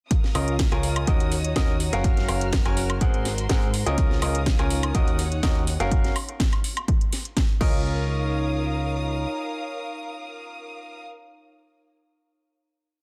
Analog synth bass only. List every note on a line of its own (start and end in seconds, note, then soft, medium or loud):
0.35 0.69 C#2 loud
0.72 1.05 C#2 loud
1.07 1.54 D#2 loud
1.56 1.90 D#2 loud
1.93 2.26 F#1 medium
2.29 2.63 F#1 loud
2.66 2.99 F#1 loud
3.49 3.84 G#2 loud
3.87 4.20 C#2 loud
4.22 4.57 C#2 loud
4.59 4.92 C#2 loud
5.80 6.11 F#1 medium
7.61 9.26 C#2 loud